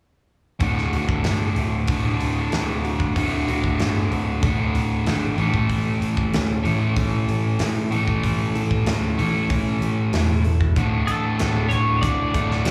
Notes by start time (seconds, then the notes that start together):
0.59 D1 D2 A2 D3, kick, open hi-hat
0.78 snare
0.93 D1 F#4, open hi-hat
1.09 kick
1.24 G1 D3, snare, open hi-hat
1.56 D1 A3, open hi-hat
1.88 D1 D2 A2 D3, kick, open hi-hat
2.20 D1 A2, open hi-hat
2.52 D1 A3, snare, open hi-hat
2.83 F#4, open hi-hat
3.00 kick
3.15 D1 D2 A2 D3, kick, open hi-hat
3.47 D1 F#4, open hi-hat
3.64 kick
3.78 G1 D3, snare, open hi-hat
4.11 D1 A3, open hi-hat
4.42 D1 D2 A2 D3, kick, open hi-hat
4.75 D1, open hi-hat
5.06 G#1 A3, snare, open hi-hat
5.37 A1 A2 E3 A3, open hi-hat
5.54 kick
5.69 A1 A2, kick, open hi-hat
6.01 A1 A4, open hi-hat
6.17 kick
6.33 D2 C#4, snare, open hi-hat
6.63 A1 A2 E3 A3 E4, open hi-hat
6.96 A1 C#4, kick, open hi-hat
7.28 A1 A3, open hi-hat
7.59 A1 E4, snare, open hi-hat
7.91 A2 E3 A3 A4, open hi-hat
8.08 kick
8.23 A1 A2, kick, open hi-hat
8.55 A1 A4, open hi-hat
8.71 kick
8.86 D2 C#4, snare, open hi-hat
9.18 A1 A2 E3 A3 E4, open hi-hat
9.50 A1 C#4, kick, open hi-hat
9.82 A1 A3, open hi-hat
10.13 E1 E4, snare, open hi-hat
10.45 A4, open hi-hat
10.61 kick
10.76 D1 D2 A2 D3, kick, closed hi-hat
11.07 A1 D2 A2 D3 A4, closed hi-hat
11.39 D1 D2 A2 D3, snare, closed hi-hat
11.69 D1 D2 A2 D3 C#5, closed hi-hat
12.01 D1 D2 A2 D3 F#4 D5, kick, closed hi-hat
12.34 D1 D2 A2 D3 A3, kick, closed hi-hat
12.51 snare
12.65 D1 D2 A2 D3 F#4, snare, closed hi-hat